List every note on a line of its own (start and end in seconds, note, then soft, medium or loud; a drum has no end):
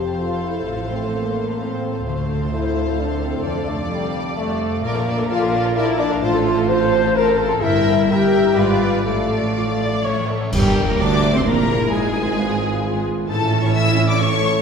0.00 0.64 F1 soft
0.00 0.63 F2 medium
0.00 3.17 F3 soft
0.00 0.89 C4 soft
0.00 1.01 F4 soft
0.00 0.21 G4 medium
0.00 0.54 A4 soft
0.00 2.02 A4 medium
0.00 0.43 C5 soft
0.00 2.03 C5 soft
0.00 0.31 F5 soft
0.00 2.02 F5 medium
0.00 0.19 A5 soft
0.09 3.47 C6 soft
0.21 0.44 F4 medium
0.21 1.48 A5 soft
0.32 1.35 F5 soft
0.44 0.68 E4 medium
0.44 1.24 C5 soft
0.55 1.12 A4 soft
0.67 2.04 A1 soft
0.67 2.08 A2 soft
0.67 2.04 A2 medium
0.67 0.78 F4 medium
0.78 2.17 A3 soft
0.90 2.28 C4 soft
0.90 1.02 C4 medium
1.02 1.94 F4 soft
1.14 1.59 A#3 medium
1.14 1.82 A4 soft
1.26 1.71 C5 soft
1.37 1.59 F5 soft
1.49 2.86 A5 soft
1.60 2.05 C4 medium
1.60 2.75 F5 soft
1.72 2.63 C5 soft
1.83 2.51 A4 soft
1.95 2.40 F4 soft
2.06 3.42 D2 medium
2.06 3.43 D2 medium
2.06 3.47 D3 medium
2.06 2.51 A3 medium
2.06 4.80 A4 medium
2.06 3.41 C5 medium
2.06 4.80 F5 medium
2.18 6.08 A3 soft
2.30 3.47 C4 soft
2.42 3.33 F4 soft
2.52 2.98 E4 medium
2.52 3.21 A4 soft
2.64 3.10 C5 soft
2.76 2.98 F5 soft
2.88 4.13 A5 soft
2.99 3.23 D4 medium
2.99 4.02 F5 soft
3.11 3.47 C5 soft
3.22 3.45 C4 medium
3.22 3.78 A4 soft
3.34 3.67 F4 soft
3.45 4.81 F1 medium
3.45 4.81 F2 medium
3.45 4.93 F3 medium
3.45 3.68 D4 medium
3.45 4.80 D5 medium
3.57 5.05 D4 soft
3.68 3.78 A3 medium
3.68 5.17 F4 soft
3.79 4.70 A4 soft
3.91 4.36 G3 medium
3.91 4.59 D5 soft
4.03 4.47 F5 medium
4.14 4.36 A5 soft
4.26 6.24 D6 medium
4.37 4.82 A3 medium
4.37 5.63 A5 medium
4.48 5.51 F5 medium
4.60 5.39 D5 soft
4.72 5.28 A4 soft
4.83 6.18 A#1 medium
4.83 6.23 A#2 medium
4.83 6.18 A#2 medium
4.83 5.29 A#3 medium
4.83 4.94 A#4 medium
4.83 4.95 D5 medium
4.83 4.95 A5 medium
4.94 7.64 F3 soft
4.94 5.07 A4 medium
4.94 5.07 A#4 soft
4.94 5.07 F5 soft
5.06 6.23 D4 medium
5.06 5.18 A#4 medium
5.06 5.19 D5 medium
5.06 5.19 A5 medium
5.18 6.09 F4 soft
5.18 5.30 A4 soft
5.18 5.30 A#4 soft
5.18 5.29 F5 medium
5.29 5.74 F4 medium
5.29 5.97 A4 medium
5.29 5.40 A#4 medium
5.29 5.40 D5 medium
5.29 5.40 A5 medium
5.41 5.53 A4 medium
5.41 5.53 A#4 soft
5.41 5.86 D5 medium
5.41 5.53 F5 medium
5.52 5.64 A#4 medium
5.52 5.64 D5 medium
5.52 5.74 F5 medium
5.52 5.64 A5 medium
5.64 5.76 A4 medium
5.64 5.76 A#4 medium
5.64 5.76 F5 medium
5.64 7.02 A5 medium
5.75 5.99 E4 loud
5.75 5.86 A#4 medium
5.75 5.87 D5 medium
5.75 6.90 F5 medium
5.75 5.86 A5 medium
5.86 5.98 A4 medium
5.86 5.98 A#4 medium
5.86 6.24 D5 medium
5.86 5.99 F5 medium
5.98 6.22 D4 medium
5.98 6.67 A4 medium
5.98 6.10 A#4 medium
5.98 6.10 D5 medium
5.98 6.10 A5 medium
6.09 6.56 F4 medium
6.09 6.21 A4 medium
6.09 6.22 A#4 medium
6.09 6.22 F5 medium
6.21 7.59 A1 medium
6.21 7.64 A2 medium
6.21 7.60 A2 medium
6.21 6.33 F4 medium
6.21 6.68 F4 loud
6.21 6.32 C5 medium
6.21 6.33 A5 medium
6.33 7.64 A3 medium
6.33 6.45 A4 medium
6.33 6.46 F5 soft
6.45 7.64 C4 medium
6.45 6.57 F4 medium
6.45 6.57 C5 medium
6.45 6.58 A5 medium
6.57 7.48 F4 medium
6.57 6.69 A4 medium
6.57 6.69 F5 medium
6.68 6.80 F4 medium
6.68 7.37 A4 medium
6.68 6.80 C5 medium
6.68 7.16 C5 loud
6.68 6.80 A5 medium
6.80 6.92 A4 medium
6.80 7.25 C5 medium
6.80 6.92 F5 medium
6.92 7.03 F4 medium
6.92 7.04 C5 medium
6.92 7.04 A5 medium
7.03 7.15 A4 medium
7.03 7.16 F5 medium
7.03 7.64 A5 medium
7.14 7.26 F4 medium
7.14 7.39 A#4 loud
7.14 7.26 C5 medium
7.14 7.64 F5 medium
7.14 7.26 A5 medium
7.26 7.38 A4 medium
7.26 7.39 A4 medium
7.26 7.63 C5 medium
7.26 7.39 F5 medium
7.38 7.50 F4 medium
7.38 7.64 A4 medium
7.38 7.62 A4 loud
7.38 7.50 C5 medium
7.38 7.50 A5 medium
7.50 7.64 F4 medium
7.50 7.62 A4 medium
7.50 7.62 F5 medium
7.61 8.53 G1 medium
7.61 8.58 G2 medium
7.61 8.53 G2 medium
7.61 8.09 E4 medium
7.61 8.06 A#4 medium
7.61 8.06 E5 medium
7.61 8.06 G5 medium
7.73 8.59 G3 medium
7.86 8.59 A#3 medium
7.97 8.20 G4 soft
8.09 8.58 G4 loud
8.09 8.56 A#4 medium
8.09 8.59 A#4 medium
8.09 8.56 E5 medium
8.09 8.56 G5 medium
8.22 8.59 G4 medium
8.33 8.59 G5 medium
8.45 8.59 A#5 medium
8.57 9.05 G#1 medium
8.57 9.08 G#2 medium
8.57 9.05 G#2 medium
8.57 9.06 F4 loud
8.57 9.06 B4 medium
8.57 9.05 D5 medium
8.57 9.06 F5 medium
8.70 9.08 G#3 soft
8.82 9.08 B3 soft
8.94 9.42 D4 soft
9.06 10.03 A1 medium
9.06 10.04 A2 medium
9.06 10.05 A2 medium
9.06 10.27 A3 medium
9.06 9.51 A4 medium
9.06 10.03 D5 medium
9.06 10.03 F5 medium
9.19 10.07 F3 soft
9.31 10.30 A3 soft
9.44 10.07 D4 soft
9.56 10.07 F4 soft
9.56 9.65 F4 medium
9.68 10.55 A4 soft
9.81 10.07 D5 soft
9.81 10.04 D5 medium
9.93 10.07 F5 soft
10.04 10.12 A1 soft
10.04 10.13 A2 medium
10.04 10.55 A2 soft
10.04 10.33 C#5 soft
10.04 10.29 C#5 medium
10.04 10.33 E5 medium
10.18 10.55 E3 soft
10.30 10.56 A3 soft
10.30 10.53 A4 medium
10.42 10.55 C#4 soft
10.52 10.85 G1 medium
10.52 10.85 G2 medium
10.52 11.94 G2 medium
10.52 10.85 G3 medium
10.52 10.85 G4 medium
10.52 10.96 A#4 medium
10.52 10.86 G5 medium
10.52 concert bass drum medium
10.52 crash medium
10.66 10.89 A#3 soft
10.77 11.34 E4 medium
10.87 10.99 A#2 medium
10.87 10.99 A#3 medium
10.87 11.46 A#3 soft
10.87 10.99 A#4 medium
10.87 11.00 A#5 medium
10.99 11.33 D2 medium
10.99 11.47 D2 medium
10.99 11.33 D3 medium
10.99 11.34 D4 medium
10.99 11.46 G4 medium
10.99 11.23 A#4 medium
10.99 11.34 D5 medium
10.99 11.34 D6 medium
11.13 11.95 E5 medium
11.24 11.94 A#4 soft
11.34 11.45 C3 medium
11.34 11.46 C4 medium
11.34 11.94 E4 soft
11.34 11.45 C5 medium
11.34 11.46 C6 medium
11.45 11.91 A#1 medium
11.45 11.92 A#1 medium
11.45 11.91 A#2 medium
11.45 11.91 A#3 medium
11.45 11.69 A#3 soft
11.45 12.36 E4 medium
11.45 11.91 A#4 medium
11.45 11.92 A#5 medium
11.59 11.80 G3 soft
11.70 11.94 A#3 soft
11.81 11.94 G3 soft
11.91 13.04 G#1 medium
11.91 13.04 G#2 medium
11.91 13.32 G#2 medium
11.91 13.04 G#3 medium
11.91 13.07 G#4 medium
11.91 13.04 G#5 medium
12.04 12.94 B3 soft
12.15 13.31 D4 medium
12.26 12.83 F4 soft
12.38 12.84 F4 medium
12.38 12.71 B4 medium
12.50 13.32 D5 medium
12.61 13.31 F5 medium
12.72 13.31 B4 medium
12.84 13.32 F4 medium
12.84 13.29 F4 medium
12.96 13.17 B3 medium
13.07 13.32 G#3 soft
13.18 13.31 B3 soft
13.28 14.61 A1 medium
13.28 14.61 A2 medium
13.28 14.62 A2 medium
13.28 14.61 C#4 medium
13.28 14.61 E4 medium
13.28 14.19 E4 medium
13.28 13.60 A4 medium
13.28 13.61 A5 medium
13.42 14.31 A3 soft
13.52 14.62 C#4 medium
13.63 14.19 E4 soft
13.63 13.75 C#5 medium
13.63 13.75 C#6 medium
13.73 14.08 A4 medium
13.73 14.08 E5 medium
13.73 14.07 E6 loud
13.87 14.62 C#5 medium
13.98 14.62 E5 medium
14.09 14.62 A4 medium
14.09 14.20 D5 medium
14.09 14.20 D6 medium
14.20 14.62 E4 medium
14.20 14.62 A4 medium
14.20 14.62 C#5 medium
14.20 14.62 C#6 loud
14.32 14.54 A3 medium
14.44 14.62 E3 medium
14.55 14.62 A3 medium